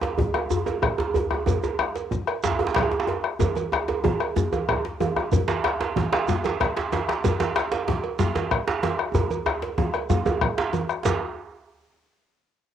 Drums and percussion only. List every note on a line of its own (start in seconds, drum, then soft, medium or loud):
0.01 cowbell medium
0.01 djembe slap medium
0.01 djembe tone loud
0.17 bombo low medium
0.17 djembe tone medium
0.17 djembe bass medium
0.34 bombo rim medium
0.34 cowbell medium
0.34 djembe tone medium
0.50 djembe tone medium
0.50 djembe bass medium
0.50 shekere medium
0.66 bombo rim soft
0.66 cowbell medium
0.66 djembe slap soft
0.66 djembe tone medium
0.66 shekere soft
0.82 bombo rim loud
0.82 bombo low loud
0.82 cowbell medium
0.82 djembe tone medium
0.98 djembe slap medium
0.98 djembe tone loud
1.14 cowbell medium
1.14 djembe tone medium
1.14 djembe bass medium
1.14 shekere soft
1.30 bombo rim medium
1.30 djembe tone medium
1.46 bombo low loud
1.46 cowbell medium
1.46 djembe tone medium
1.46 djembe bass medium
1.46 shekere medium
1.63 cowbell medium
1.63 djembe tone medium
1.63 shekere soft
1.79 bombo rim loud
1.79 djembe tone medium
1.96 cowbell medium
1.96 djembe slap medium
1.96 shekere soft
2.11 bombo low medium
2.11 djembe slap soft
2.11 djembe tone medium
2.11 shekere soft
2.27 bombo rim medium
2.27 cowbell medium
2.44 djembe slap loud
2.44 djembe slap soft
2.44 djembe bass medium
2.44 shekere medium
2.52 djembe tone medium
2.59 cowbell soft
2.59 djembe tone medium
2.67 djembe slap medium
2.75 bombo rim loud
2.75 bombo low loud
2.75 cowbell medium
2.75 djembe slap loud
2.75 djembe slap soft
2.83 djembe tone medium
2.91 djembe slap medium
2.91 djembe tone medium
3.00 djembe slap medium
3.07 bombo rim soft
3.07 cowbell medium
3.07 djembe slap soft
3.07 djembe tone medium
3.24 bombo rim medium
3.24 djembe slap soft
3.40 bombo low loud
3.40 cowbell medium
3.40 djembe tone loud
3.40 djembe bass medium
3.40 low conga medium
3.40 shekere medium
3.56 bombo rim soft
3.56 cowbell medium
3.56 djembe tone medium
3.56 high conga medium
3.56 shekere soft
3.72 bombo rim loud
3.72 djembe tone medium
3.88 cowbell medium
3.88 djembe slap medium
3.88 djembe tone medium
4.04 bombo low loud
4.04 djembe tone medium
4.04 djembe tone loud
4.04 high conga medium
4.20 bombo rim medium
4.20 cowbell medium
4.36 djembe tone medium
4.36 djembe bass medium
4.36 low conga medium
4.36 shekere medium
4.53 bombo rim soft
4.53 cowbell medium
4.53 djembe slap soft
4.53 djembe tone medium
4.53 high conga medium
4.53 shekere soft
4.69 bombo rim loud
4.69 bombo low loud
4.69 cowbell medium
4.69 djembe tone loud
4.85 djembe slap medium
5.00 cowbell medium
5.00 djembe tone medium
5.00 high conga medium
5.00 djembe tone medium
5.00 shekere soft
5.16 bombo rim medium
5.16 djembe tone medium
5.32 bombo low loud
5.32 cowbell medium
5.32 low conga medium
5.32 djembe bass medium
5.32 shekere medium
5.48 bombo rim soft
5.48 cowbell medium
5.48 djembe slap loud
5.48 high conga medium
5.48 djembe tone medium
5.48 shekere soft
5.64 bombo rim loud
5.64 djembe slap medium
5.81 cowbell medium
5.81 djembe slap medium
5.96 bombo low loud
5.96 djembe slap medium
5.96 high conga medium
5.96 djembe tone medium
6.12 bombo rim medium
6.12 cowbell medium
6.12 djembe slap loud
6.28 djembe slap medium
6.28 djembe bass medium
6.28 low conga medium
6.28 shekere medium
6.44 bombo rim soft
6.44 cowbell medium
6.44 djembe slap soft
6.44 djembe slap medium
6.44 djembe tone medium
6.44 high conga medium
6.44 shekere soft
6.60 bombo rim loud
6.60 bombo low loud
6.60 cowbell medium
6.60 djembe slap medium
6.76 djembe slap medium
6.76 djembe slap loud
6.92 cowbell medium
6.92 djembe slap medium
6.92 high conga medium
6.92 djembe tone medium
6.92 shekere soft
7.08 bombo rim medium
7.08 djembe slap medium
7.08 high conga soft
7.24 bombo low loud
7.24 cowbell medium
7.24 djembe slap medium
7.24 low conga medium
7.24 djembe bass medium
7.24 shekere medium
7.40 bombo rim soft
7.40 cowbell medium
7.40 djembe slap loud
7.40 high conga medium
7.40 djembe tone medium
7.40 shekere soft
7.56 bombo rim loud
7.56 djembe slap medium
7.72 cowbell medium
7.72 djembe slap medium
7.88 bombo low loud
7.88 djembe slap medium
7.88 high conga medium
7.88 djembe tone medium
8.04 cowbell medium
8.04 high conga soft
8.19 djembe slap loud
8.19 low conga medium
8.19 djembe bass medium
8.19 shekere medium
8.35 bombo rim soft
8.35 cowbell medium
8.35 djembe slap medium
8.35 djembe slap soft
8.35 high conga medium
8.35 djembe tone medium
8.35 shekere soft
8.51 bombo rim loud
8.51 bombo low loud
8.51 cowbell medium
8.68 djembe slap loud
8.68 djembe slap medium
8.83 cowbell medium
8.83 djembe slap medium
8.83 high conga medium
8.83 djembe tone medium
8.83 shekere soft
8.99 bombo rim medium
8.99 high conga soft
9.14 bombo low loud
9.14 cowbell medium
9.14 djembe tone loud
9.14 djembe bass medium
9.14 low conga medium
9.14 shekere medium
9.30 cowbell medium
9.30 djembe slap soft
9.30 high conga medium
9.30 djembe tone medium
9.30 shekere soft
9.46 bombo rim loud
9.46 djembe tone loud
9.62 cowbell medium
9.62 djembe slap medium
9.62 high conga soft
9.78 bombo rim soft
9.78 bombo low loud
9.78 djembe tone loud
9.78 high conga medium
9.78 djembe tone medium
9.94 bombo rim medium
9.94 cowbell medium
9.94 djembe slap soft
10.09 bombo rim soft
10.09 djembe tone loud
10.09 high conga soft
10.09 djembe bass medium
10.09 low conga medium
10.09 shekere medium
10.25 bombo rim soft
10.25 cowbell medium
10.25 djembe tone medium
10.25 high conga medium
10.25 djembe tone loud
10.25 shekere soft
10.41 bombo rim loud
10.41 bombo low loud
10.41 cowbell medium
10.57 bombo rim soft
10.57 djembe slap loud
10.57 djembe slap medium
10.73 cowbell soft
10.73 djembe tone medium
10.73 high conga medium
10.73 shekere soft
10.89 bombo rim medium
10.89 djembe slap soft
10.89 high conga soft
10.89 shekere soft
11.05 bombo low medium
11.05 cowbell medium
11.05 djembe slap loud
11.05 low conga medium
11.05 djembe bass medium
11.05 shekere medium